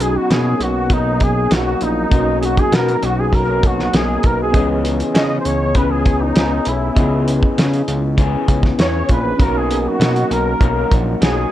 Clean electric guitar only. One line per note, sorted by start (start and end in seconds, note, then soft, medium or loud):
0.00 0.28 B2 medium
0.00 0.29 F#3 medium
0.00 0.31 D#4 medium
0.29 0.88 B2 soft
0.29 0.89 F#3 medium
0.29 0.90 A#3 medium
0.29 0.90 D#4 medium
0.90 1.51 B2 medium
0.90 1.50 F#3 medium
0.90 1.51 A#3 medium
0.90 1.52 D#4 medium
1.51 2.11 F#3 medium
1.51 2.13 A#3 medium
1.51 2.13 D#4 medium
2.11 3.31 B2 medium
2.11 3.31 F#3 medium
2.11 3.32 A#3 medium
2.15 3.33 D#4 medium
3.32 3.91 B2 medium
3.32 3.92 F#3 medium
3.32 3.93 A#3 medium
3.32 3.94 D#4 medium
3.92 4.52 B2 medium
3.92 4.53 F#3 medium
3.92 4.54 A#3 medium
3.92 4.55 D#4 medium
4.52 5.75 C#3 medium
4.52 5.75 E3 medium
4.52 5.76 B3 medium
4.52 5.76 C#4 medium
4.57 5.76 G#4 medium
5.76 6.36 C#3 medium
5.76 6.34 E3 medium
5.76 6.36 B3 medium
5.76 6.36 C#4 medium
5.76 6.37 G#4 medium
6.35 6.95 E3 medium
6.35 6.97 B3 medium
6.35 6.97 C#4 medium
6.35 6.98 G#4 medium
6.95 8.16 C#3 medium
6.95 8.16 E3 medium
6.95 8.18 B3 medium
6.95 8.17 C#4 medium
6.95 8.18 G#4 medium
8.17 8.78 C#3 medium
8.17 8.77 E3 medium
8.17 8.79 B3 medium
8.17 8.79 C#4 medium
8.17 8.79 G#4 medium
8.78 9.39 E3 medium
8.78 9.40 B3 medium
8.78 9.40 C#4 medium
8.78 9.40 G#4 medium
9.39 10.00 B2 medium
9.39 9.98 F#3 medium
9.39 9.99 A#3 medium
9.39 10.00 D#4 medium
9.39 10.01 F#4 medium
9.99 10.59 F#3 medium
9.99 10.60 A#3 medium
9.99 10.60 D#4 medium
9.99 10.61 F#4 medium
10.60 11.19 F#3 medium
10.60 11.20 A#3 medium
10.60 11.21 D#4 medium
10.60 11.22 F#4 medium
11.20 11.52 F#3 medium
11.20 11.52 A#3 medium
11.20 11.52 D#4 medium
11.20 11.52 F#4 medium